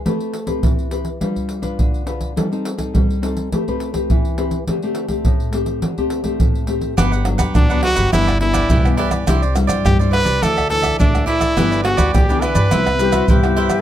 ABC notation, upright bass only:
X:1
M:4/4
L:1/16
Q:1/4=104
K:G
V:1 name="Upright bass" clef=bass
z16 | z16 | z16 | G,,,3 D,, D,,3 G,,, G,,,4 B,,,2 z2 |
C,,3 G,, G,,3 C,, D,,4 D,,2 z2 | G,,,3 D,, D,,3 G,, C,,4 C,2 z2 |]